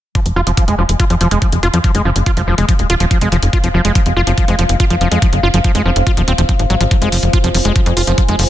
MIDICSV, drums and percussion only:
0, 0, Header, 1, 2, 480
1, 0, Start_track
1, 0, Key_signature, -4, "minor"
1, 0, Tempo, 422535
1, 172, Time_signature, 4, 2, 24, 8
1, 9648, End_track
2, 0, Start_track
2, 0, Title_t, "Drums"
2, 172, Note_on_c, 9, 36, 115
2, 172, Note_on_c, 9, 42, 78
2, 285, Note_off_c, 9, 36, 0
2, 285, Note_off_c, 9, 42, 0
2, 292, Note_on_c, 9, 42, 52
2, 405, Note_off_c, 9, 42, 0
2, 532, Note_on_c, 9, 42, 56
2, 646, Note_off_c, 9, 42, 0
2, 651, Note_on_c, 9, 36, 113
2, 652, Note_on_c, 9, 42, 85
2, 765, Note_off_c, 9, 36, 0
2, 766, Note_off_c, 9, 42, 0
2, 772, Note_on_c, 9, 42, 55
2, 886, Note_off_c, 9, 42, 0
2, 1012, Note_on_c, 9, 42, 54
2, 1126, Note_off_c, 9, 42, 0
2, 1132, Note_on_c, 9, 36, 116
2, 1132, Note_on_c, 9, 42, 77
2, 1245, Note_off_c, 9, 36, 0
2, 1246, Note_off_c, 9, 42, 0
2, 1252, Note_on_c, 9, 42, 53
2, 1365, Note_off_c, 9, 42, 0
2, 1372, Note_on_c, 9, 42, 64
2, 1486, Note_off_c, 9, 42, 0
2, 1492, Note_on_c, 9, 42, 54
2, 1606, Note_off_c, 9, 42, 0
2, 1611, Note_on_c, 9, 36, 112
2, 1612, Note_on_c, 9, 42, 78
2, 1725, Note_off_c, 9, 36, 0
2, 1725, Note_off_c, 9, 42, 0
2, 1732, Note_on_c, 9, 42, 55
2, 1845, Note_off_c, 9, 42, 0
2, 1852, Note_on_c, 9, 42, 36
2, 1965, Note_off_c, 9, 42, 0
2, 1972, Note_on_c, 9, 42, 55
2, 2085, Note_off_c, 9, 42, 0
2, 2091, Note_on_c, 9, 36, 120
2, 2091, Note_on_c, 9, 42, 75
2, 2205, Note_off_c, 9, 36, 0
2, 2205, Note_off_c, 9, 42, 0
2, 2212, Note_on_c, 9, 42, 52
2, 2325, Note_off_c, 9, 42, 0
2, 2451, Note_on_c, 9, 42, 51
2, 2565, Note_off_c, 9, 42, 0
2, 2571, Note_on_c, 9, 36, 118
2, 2571, Note_on_c, 9, 42, 82
2, 2685, Note_off_c, 9, 36, 0
2, 2685, Note_off_c, 9, 42, 0
2, 2692, Note_on_c, 9, 42, 52
2, 2805, Note_off_c, 9, 42, 0
2, 2931, Note_on_c, 9, 42, 52
2, 3045, Note_off_c, 9, 42, 0
2, 3051, Note_on_c, 9, 36, 122
2, 3051, Note_on_c, 9, 42, 75
2, 3165, Note_off_c, 9, 36, 0
2, 3165, Note_off_c, 9, 42, 0
2, 3171, Note_on_c, 9, 42, 51
2, 3285, Note_off_c, 9, 42, 0
2, 3291, Note_on_c, 9, 42, 62
2, 3405, Note_off_c, 9, 42, 0
2, 3412, Note_on_c, 9, 42, 52
2, 3525, Note_off_c, 9, 42, 0
2, 3531, Note_on_c, 9, 36, 120
2, 3531, Note_on_c, 9, 42, 80
2, 3645, Note_off_c, 9, 36, 0
2, 3645, Note_off_c, 9, 42, 0
2, 3651, Note_on_c, 9, 42, 53
2, 3765, Note_off_c, 9, 42, 0
2, 3772, Note_on_c, 9, 42, 36
2, 3885, Note_off_c, 9, 42, 0
2, 3891, Note_on_c, 9, 42, 50
2, 4005, Note_off_c, 9, 42, 0
2, 4011, Note_on_c, 9, 36, 123
2, 4011, Note_on_c, 9, 42, 75
2, 4125, Note_off_c, 9, 36, 0
2, 4125, Note_off_c, 9, 42, 0
2, 4131, Note_on_c, 9, 42, 49
2, 4245, Note_off_c, 9, 42, 0
2, 4371, Note_on_c, 9, 42, 52
2, 4485, Note_off_c, 9, 42, 0
2, 4491, Note_on_c, 9, 36, 122
2, 4491, Note_on_c, 9, 42, 79
2, 4605, Note_off_c, 9, 36, 0
2, 4605, Note_off_c, 9, 42, 0
2, 4611, Note_on_c, 9, 42, 51
2, 4724, Note_off_c, 9, 42, 0
2, 4851, Note_on_c, 9, 42, 51
2, 4965, Note_off_c, 9, 42, 0
2, 4971, Note_on_c, 9, 36, 123
2, 4971, Note_on_c, 9, 42, 71
2, 5085, Note_off_c, 9, 36, 0
2, 5085, Note_off_c, 9, 42, 0
2, 5091, Note_on_c, 9, 42, 51
2, 5205, Note_off_c, 9, 42, 0
2, 5211, Note_on_c, 9, 42, 60
2, 5325, Note_off_c, 9, 42, 0
2, 5331, Note_on_c, 9, 42, 50
2, 5445, Note_off_c, 9, 42, 0
2, 5451, Note_on_c, 9, 42, 75
2, 5452, Note_on_c, 9, 36, 117
2, 5565, Note_off_c, 9, 36, 0
2, 5565, Note_off_c, 9, 42, 0
2, 5571, Note_on_c, 9, 42, 50
2, 5685, Note_off_c, 9, 42, 0
2, 5691, Note_on_c, 9, 42, 35
2, 5805, Note_off_c, 9, 42, 0
2, 5811, Note_on_c, 9, 42, 50
2, 5925, Note_off_c, 9, 42, 0
2, 5931, Note_on_c, 9, 42, 73
2, 5932, Note_on_c, 9, 36, 121
2, 6045, Note_off_c, 9, 36, 0
2, 6045, Note_off_c, 9, 42, 0
2, 6052, Note_on_c, 9, 42, 47
2, 6165, Note_off_c, 9, 42, 0
2, 6292, Note_on_c, 9, 42, 51
2, 6405, Note_off_c, 9, 42, 0
2, 6411, Note_on_c, 9, 36, 118
2, 6411, Note_on_c, 9, 42, 77
2, 6525, Note_off_c, 9, 36, 0
2, 6525, Note_off_c, 9, 42, 0
2, 6531, Note_on_c, 9, 42, 50
2, 6645, Note_off_c, 9, 42, 0
2, 6771, Note_on_c, 9, 42, 51
2, 6885, Note_off_c, 9, 42, 0
2, 6891, Note_on_c, 9, 36, 123
2, 6892, Note_on_c, 9, 42, 69
2, 7005, Note_off_c, 9, 36, 0
2, 7005, Note_off_c, 9, 42, 0
2, 7011, Note_on_c, 9, 42, 49
2, 7125, Note_off_c, 9, 42, 0
2, 7131, Note_on_c, 9, 42, 58
2, 7245, Note_off_c, 9, 42, 0
2, 7252, Note_on_c, 9, 42, 48
2, 7365, Note_off_c, 9, 42, 0
2, 7372, Note_on_c, 9, 36, 118
2, 7372, Note_on_c, 9, 42, 73
2, 7485, Note_off_c, 9, 36, 0
2, 7485, Note_off_c, 9, 42, 0
2, 7492, Note_on_c, 9, 42, 51
2, 7605, Note_off_c, 9, 42, 0
2, 7612, Note_on_c, 9, 42, 35
2, 7725, Note_off_c, 9, 42, 0
2, 7732, Note_on_c, 9, 42, 49
2, 7845, Note_off_c, 9, 42, 0
2, 7852, Note_on_c, 9, 36, 114
2, 7852, Note_on_c, 9, 42, 73
2, 7965, Note_off_c, 9, 36, 0
2, 7965, Note_off_c, 9, 42, 0
2, 7972, Note_on_c, 9, 42, 49
2, 8085, Note_off_c, 9, 42, 0
2, 8091, Note_on_c, 9, 46, 107
2, 8205, Note_off_c, 9, 46, 0
2, 8212, Note_on_c, 9, 42, 49
2, 8325, Note_off_c, 9, 42, 0
2, 8331, Note_on_c, 9, 42, 75
2, 8332, Note_on_c, 9, 36, 117
2, 8445, Note_off_c, 9, 36, 0
2, 8445, Note_off_c, 9, 42, 0
2, 8451, Note_on_c, 9, 42, 49
2, 8565, Note_off_c, 9, 42, 0
2, 8572, Note_on_c, 9, 46, 104
2, 8685, Note_off_c, 9, 46, 0
2, 8692, Note_on_c, 9, 42, 51
2, 8805, Note_off_c, 9, 42, 0
2, 8811, Note_on_c, 9, 42, 74
2, 8812, Note_on_c, 9, 36, 123
2, 8925, Note_off_c, 9, 36, 0
2, 8925, Note_off_c, 9, 42, 0
2, 8931, Note_on_c, 9, 42, 50
2, 9045, Note_off_c, 9, 42, 0
2, 9051, Note_on_c, 9, 46, 104
2, 9165, Note_off_c, 9, 46, 0
2, 9172, Note_on_c, 9, 42, 49
2, 9285, Note_off_c, 9, 42, 0
2, 9291, Note_on_c, 9, 42, 73
2, 9292, Note_on_c, 9, 36, 115
2, 9405, Note_off_c, 9, 36, 0
2, 9405, Note_off_c, 9, 42, 0
2, 9412, Note_on_c, 9, 42, 50
2, 9525, Note_off_c, 9, 42, 0
2, 9531, Note_on_c, 9, 46, 102
2, 9645, Note_off_c, 9, 46, 0
2, 9648, End_track
0, 0, End_of_file